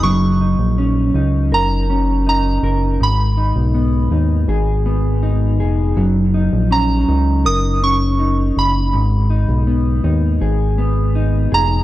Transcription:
<<
  \new Staff \with { instrumentName = "Synth bell" } { \time 4/4 \key fis \major \tempo 4 = 81 cis'''4. r8 ais''4 ais''4 | b''2.~ b''8 r8 | r4 ais''4 dis'''8 cis'''4 b''8~ | b''4. r2 ais''8 | }
  \new Staff \with { instrumentName = "Clean electric guitar" } { \time 4/4 \key fis \major fis8 dis'8 cis'8 dis'8 ais'8 cis'8 dis'8 ais'8 | gis,8 dis'8 b8 dis'8 gis'8 b8 dis'8 gis'8 | fis8 dis'8 cis'8 dis'8 ais'8 cis'8 dis'4 | gis,8 dis'8 b8 dis'8 gis'8 b8 dis'8 gis'8 | }
  \new Staff \with { instrumentName = "Analog synth bass" } { \clef bass \time 4/4 \key fis \major fis,,8. ais,,8. cis,8 fis,,4. fis,,8 | gis,,8. b,,8. dis,8 gis,,4. eis,,8 | fis,,8. ais,,8. cis,8 fis,,4. fis,,8 | gis,,8. b,,8. dis,8 gis,,4. eis,,8 | }
>>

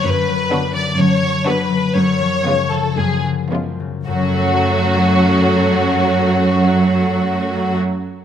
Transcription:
<<
  \new Staff \with { instrumentName = "Violin section" } { \time 4/4 \key fis \minor \tempo 4 = 114 b'4. d''8 cis''4 b'4 | cis''4. a'8 gis'8 r4. | fis'1~ | fis'1 | }
  \new Staff \with { instrumentName = "Violin section" } { \time 4/4 \key fis \minor r4 <d' fis'>4 r4 <d' fis'>4 | r4 <cis' eis'>4 r4 <cis' eis'>4 | <cis' fis'>1~ | <cis' fis'>1 | }
  \new Staff \with { instrumentName = "Viola section" } { \clef bass \time 4/4 \key fis \minor r4 <fis b>4 r4 <fis b>4 | r4 <gis b>4 r4 <gis b>4 | <fis a>1~ | <fis a>1 | }
  \new Staff \with { instrumentName = "Harp" } { \clef bass \time 4/4 \key fis \minor <fis, fis>8 fis8 d8 fis8 d8 fis8 d8 fis8 | fis,8 eis8 cis8 eis8 fis,8 cis8 eis8 cis8 | <fis, fis a cis' a'>1~ | <fis, fis a cis' a'>1 | }
  \new Staff \with { instrumentName = "Cello section" } { \clef bass \time 4/4 \key fis \minor fis,4 r4 fis,4 r4 | fis,4 r4 fis,4 r4 | fis,1~ | fis,1 | }
>>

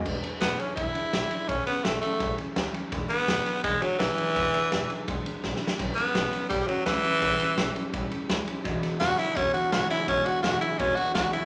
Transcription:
<<
  \new Staff \with { instrumentName = "Tenor saxophone" } { \time 4/4 \key e \mixolydian \tempo 4 = 168 r4 b8 cis'8 e'2 | cis'8 b8 a8 a4 r4. | r8 b4. gis8 fis8 e4~ | e2 r2 |
r8 b4. g8 fis8 e4~ | e2 r2 | r4 fis'8 e'8 cis'8 fis'8 fis'8 e'8 | cis'8 fis'8 fis'8 e'8 cis'8 fis'8 fis'8 e'8 | }
  \new Staff \with { instrumentName = "Steel-string acoustic guitar" } { \clef bass \time 4/4 \key e \mixolydian <e, b, e gis d' e'>8 <e gis d' e'>8 <e gis d' e'>8 <e gis d' e'>8 <e, b, e gis d' e'>8 <e gis d' e'>8 <e gis d' e'>8 <e gis d' e'>8 | <a, e g cis' e'>8 <g cis' e'>8 <e g cis' e'>8 <g cis' e'>8 <a, e g cis' e'>8 <g cis' e'>8 <e g cis' e'>8 <g cis' e'>8 | <e, b, e gis d' e'>8 <e gis d' e'>8 <e gis d' e'>8 <e gis d' e'>8 <e, b, e gis d' e'>8 <e gis d' e'>8 <e gis d' e'>8 <e gis d' e'>8 | <e, b, e gis d' e'>8 <e gis d' e'>8 <e gis d' e'>8 <e gis d' e'>8 <e, b, e gis d' e'>8 <e gis d' e'>8 <e gis d' e'>8 <e gis d' e'>8 |
<a, e g cis' e'>8 <g cis' e'>8 <e g cis' e'>8 <g cis' e'>8 <a, e g cis' e'>8 <g cis' e'>8 <e g cis' e'>8 <g cis' e'>8 | <a, e g cis' e'>8 <g cis' e'>8 <e g cis' e'>8 <g cis' e'>8 <a, e g cis' e'>8 <g cis' e'>8 <e g cis' e'>8 <g cis' e'>8 | <e, b, e gis d' e'>8 <e gis d' e'>8 <e gis d'>8 <e gis d' e'>8 <e, b, e gis d' e'>8 <e gis d' e'>8 <e gis d' e'>8 <e gis d' e'>8 | <e, b, e gis d' e'>8 <e gis d' e'>8 <e gis d' e'>8 <e gis d' e'>8 <e, b, e gis d' e'>8 <e gis d' e'>8 <e gis d' e'>8 <e gis d' e'>8 | }
  \new Staff \with { instrumentName = "Clean electric guitar" } { \clef bass \time 4/4 \key e \mixolydian r1 | r1 | r1 | r1 |
r1 | r1 | <e, b,>4 <e, cis>8 <e, cis>8 <e, b,>4 <e, cis>8 <e, cis>8 | <e, b,>4 <e, cis>8 <e, cis>8 <e, b,>4 <e, cis>8 <e, cis>8 | }
  \new Staff \with { instrumentName = "Upright bass" } { \clef bass \time 4/4 \key e \mixolydian e,,8 r8 e,,8 r8 e,,8 r8 gis,,8 r8 | a,,8 r8 a,,8 r8 a,,8 r8 cis,8 r8 | e,,8 r8 e,,8 r8 e,,8 r8 gis,,8 r8 | e,,8 r8 e,,8 r8 e,,8 r8 b,,8 r8 |
a,,8 r8 a,,8 r8 a,,8 r8 cis,8 r8 | a,,8 r8 a,,8 r8 a,,8 r8 cis,8 r8 | e,,8 r8 e,,8 r8 e,,8 r8 gis,,8 r8 | e,,8 r8 e,,8 r8 e,,8 r8 cis,8 r8 | }
  \new DrumStaff \with { instrumentName = "Drums" } \drummode { \time 4/4 <cymc bd>8 cymr8 <cymr sn>8 cymr8 <bd cymr>8 cymr8 <cymr sn>8 cymr8 | <bd cymr>8 cymr8 <cymr sn>8 <cymr sn>8 <bd cymr sn>8 cymr8 <cymr sn>8 cymr8 | <bd cymr sn>8 cymr8 <cymr sn>8 <cymr sn>8 <bd cymr>8 cymr8 <cymr sn>8 cymr8 | <bd cymr>8 cymr8 <cymr sn>8 cymr8 <bd cymr>8 cymr8 \tuplet 3/2 { <bd sn>8 sn8 sn8 } |
<cymc bd cymr sn>8 <cymr sn>8 <cymr sn>8 <cymr sn>8 <bd cymr sn>8 cymr8 <cymr sn>8 cymr8 | <bd cymr>8 cymr8 <cymr sn>8 cymr8 <bd cymr>8 cymr8 <cymr sn>8 cymr8 | <bd cymr sn>8 <cymr sn>8 <cymr sn>8 <cymr sn>8 <bd cymr sn>8 cymr8 <cymr sn>8 cymr8 | <bd cymr>8 cymr8 <cymr sn>8 cymr8 <bd cymr>8 cymr8 <bd cymr sn>8 cymr8 | }
>>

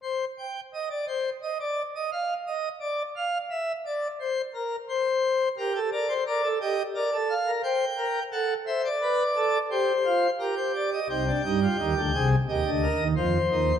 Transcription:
<<
  \new Staff \with { instrumentName = "Pipe organ" } { \time 4/4 \key c \minor \tempo 4 = 87 << { c''8 g''8 ees''16 d''16 c''8 ees''16 d''8 ees''16 f''8 ees''8 | d''8 f''8 e''8 d''8 c''8 bes'8 c''4 | bes'16 a'16 bes'16 c''16 d''8 ees''8 d''8 f''8 g''4 | fis''8 e''16 d''4~ d''16 c''4 bes'16 c''16 d''16 ees''16 |
g''2 ees''4 r4 | } \\ { r1 | r1 | g'8 d''8 bes'16 a'16 g'8 bes'16 a'8 bes'16 c''8 bes'8 | a'8 c''8 b'8 a'8 g'8 f'8 g'4 |
ees'16 d'16 ees'16 f'16 g'8 aes'8 g'8 bes'8 c''4 | } >> }
  \new Staff \with { instrumentName = "Pipe organ" } { \clef bass \time 4/4 \key c \minor r1 | r1 | r1 | r1 |
<c, c>8 <g, g>8 <ees, ees>16 <d, d>16 <c, c>8 <ees, ees>16 <d, d>8 <ees, ees>16 <f, f>8 <ees, ees>8 | }
>>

